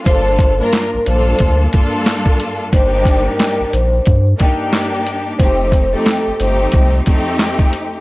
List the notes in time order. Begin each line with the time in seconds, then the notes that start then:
0.04 G1 G2 A#3 D4 F4 A4 C5, kick, closed hi-hat, shaker
0.26 shaker
0.39 kick, closed hi-hat
0.59 G2 A#3 D4 F4 A#4, shaker
0.72 snare, clap, closed hi-hat, shaker
0.93 A#1, shaker
1.05 A#1 G2 A#3 D4 F4 A4 C5, closed hi-hat, shaker
1.26 shaker
1.39 D2, kick, closed hi-hat, shaker
1.59 shaker
1.72 G2 A#3 D4 F4 A4, kick, closed hi-hat
1.93 shaker
2.06 snare, clap, closed hi-hat, shaker
2.26 kick, shaker
2.40 closed hi-hat
2.59 shaker
2.71 G1 G2 A#3 D4 D#4 G4 C5, kick, closed hi-hat, shaker
2.93 shaker
3.05 kick, closed hi-hat
3.26 A#4, shaker
3.39 snare, clap, closed hi-hat, shaker
3.59 A#1, shaker
3.72 A#1 C5, closed hi-hat, shaker
3.93 shaker
4.05 G2, kick, closed hi-hat, shaker
4.26 shaker
4.38 G2 A#3 D4 D#4 G4, kick, closed hi-hat
4.59 shaker
4.73 snare, clap, closed hi-hat, shaker
4.92 shaker
5.06 closed hi-hat
5.26 shaker
5.39 F1 F2 A3 C4 D#4 G4 C5, kick, closed hi-hat, shaker
5.59 shaker
5.72 kick, closed hi-hat
5.92 F2 A3 C4 D#4 G4 A4, shaker
6.06 snare, clap, closed hi-hat, shaker
6.26 G1, shaker
6.39 G1 F2 A3 C4 D#4 G4 C5, closed hi-hat, shaker
6.60 shaker
6.72 C2, kick, closed hi-hat, shaker
6.93 shaker
7.06 F2 A3 C4 D#4 G4, kick, closed hi-hat
7.26 shaker
7.39 snare, clap, closed hi-hat, shaker
7.59 kick, shaker
7.73 closed hi-hat
7.93 shaker